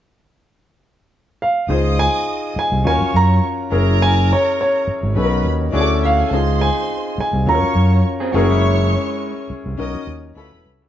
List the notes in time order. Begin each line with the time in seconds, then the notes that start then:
1.42 F5
1.68 C#2 D#4 F4 G#4 C5 D#5 D#6
1.99 G#5
2.56 G#5, muted fingered electric bass stroke
2.72 C2
2.84 D#2 C#4 F4 F#4 A#4 C#5 G#5 C#6
3.01 muted fingered electric bass stroke
3.14 F#2 A#5
3.71 F#1 C#4 E4 G#4 A#4 A#5
4.02 G#5
4.33 C#5
4.61 C#5
4.87 muted fingered electric bass stroke
5.03 G#1
5.15 B1 C#4 D#4 F#4 A4 B4 B5
5.24 A#4
5.45 D#2
5.72 D2 C#4 E4 F#4 G#4 D5 D6
5.81 A4
6.02 E4 E5 F5
6.11 F#4 F#5
6.19 G#4 G#5
6.25 A4 A5
6.31 C#2 C4 D#4 F4 G#4 C5 C6
6.61 G#5
7.18 G#5, muted fingered electric bass stroke
7.33 C2
7.46 D#2 C#4 F4 F#4 A4 C#5 A#5 C#6
7.55 A#4
7.62 muted fingered electric bass stroke
7.75 F#2
8.20 C4 G#4
8.33 F#1 A#3 C#4 E4 F#4 G#4 A#4 C#5 C#6
8.49 G#3 E4
9.50 muted fingered electric bass stroke
9.66 C2
9.78 B1 C#4 D#4 F#4 A#4 D#5 D#6
9.95 muted fingered electric bass stroke
10.07 D#2
10.35 D2 C#4 E4 F4 A4 B4 B5
10.43 F#4
10.52 E1
10.65 C2
10.82 C#2